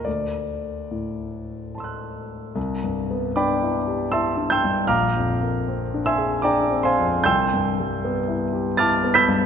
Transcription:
X:1
M:3/4
L:1/8
Q:1/4=77
K:C
V:1 name="Grand piano"
d4 [ac'e'^f']2 | z2 [dgbd']2 [eac'e'] [gc'e'g'] | [f_bd'f']3 [e_ac'e'] [dgbd'] [cfac'] | [gc'e'g']4 [ad'f'a'] [be'g'b'] |]
V:2 name="Grand piano"
D,,2 A,,4 | (3C,, G,, B, (3D E G (3E D G,, | (3_B,,, F,, _B, (3C D _A (3D C F,, | (3C,, G,, G, (3B, E G (3E B, G,, |]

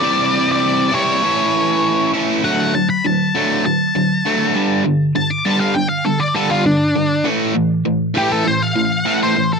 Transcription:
X:1
M:4/4
L:1/16
Q:1/4=100
K:D
V:1 name="Lead electric guitar"
d3 d3 c8 z2 | f2 a b a4 a8 | z2 a d' a =f g f A d A =F D4 | z6 G A =c =f4 c2 A |]
V:2 name="Overdriven electric guitar" clef=bass
[=C,E,G,=CE]6 [C,E,G,CE]2 [A,,E,A,^CE]6 [A,,E,A,CE]2 | [D,F,A,]2 [D,F,]2 [D,F,]2 [D,F,A,]2 [D,F,]2 [D,F,]2 [D,F,A,]2 [G,,D,G,]2 | [G,,D,]2 [G,,D,]2 [G,,D,G,]2 [G,,D,]2 [G,,D,]2 [G,,D,G,]2 [G,,D,]2 [G,,D,]2 | [A,,E,A,]2 [A,,E,]2 [A,,E,]2 [A,,E,A,]2 [A,,E,]2 [A,,E,]2 [A,,E,A,]2 [A,,E,]2 |]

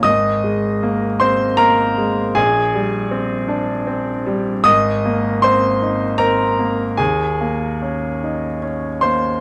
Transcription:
X:1
M:3/4
L:1/8
Q:1/4=77
K:Ab
V:1 name="Grand piano"
[ee']3 [cc'] [Bb]2 | [Aa]6 | [ee']2 [cc']2 [Bb]2 | [Aa]4 z [cc'] |]
V:2 name="Grand piano"
A,,, A, B, C B, A, | B,,, G, C =D C G, | A,,, B, C E C B, | E,, B, D E D B, |]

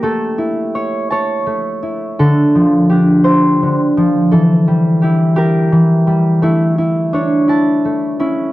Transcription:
X:1
M:6/8
L:1/8
Q:3/8=56
K:Aphr
V:1 name="Harp"
A2 ^c c3 | A2 G c3 | A2 G G3 | E2 D E2 ^C |]
V:2 name="Harp"
A, E2 a A, E | D, F, D2 D, F, | E, G, E B E, G, | A, E ^c a A, E |]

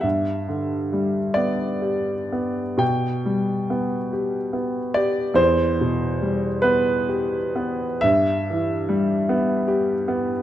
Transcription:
X:1
M:6/8
L:1/8
Q:3/8=47
K:G
V:1 name="Grand piano"
e3 d3 | g4 z d | c3 B3 | e4 z2 |]
V:2 name="Grand piano"
G,, D, G, B, G B, | B,, G, B, G B, G | E,, B,, G, B, G B, | G,, E, G, B, G B, |]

